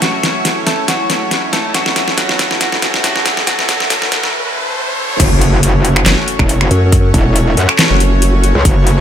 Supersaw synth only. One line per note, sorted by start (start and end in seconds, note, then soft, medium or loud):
0.00 5.16 A3 medium
0.00 5.16 C#4 medium
0.00 5.16 E4 medium
0.00 1.73 C#5 medium
1.74 5.19 A4 medium
5.20 9.01 A3 medium
5.20 9.01 C#4 medium
5.20 9.01 F#4 medium
5.20 9.01 C#5 medium